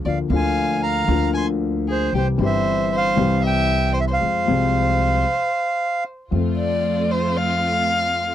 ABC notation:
X:1
M:4/4
L:1/16
Q:1/4=115
K:Fm
V:1 name="Bandoneon"
f2 a4 b4 c'2 z2 c2 | c2 =e4 f4 g4 e f- | f12- f2 z2 | [K:F] z16 |]
V:2 name="Violin"
=d2 f4 f4 a2 z2 A2 | G2 c4 c4 =e4 c c- | c12- c2 z2 | [K:F] z2 d4 c2 f8 |]
V:3 name="String section"
z16 | z16 | z16 | [K:F] [A,CF]16 |]
V:4 name="Grand piano" clef=bass
[=D,,=D,F,B,F]2 [D,,D,F,B,F]6 [D,,D,F,B,F]8 | [C,,C,=E,G,CG]2 [G,,,G,,E,G,CG]6 [C,,C,E,G,CG]8 | [F,,F,A,CA]2 [C,,C,F,A,CA]6 z8 | [K:F] [F,,F,A,CA]16 |]
V:5 name="Upright bass" clef=bass
=D,,2 D,,6 D,,8 | C,,2 G,,,6 C,,8 | F,,2 C,,6 z8 | [K:F] F,,16 |]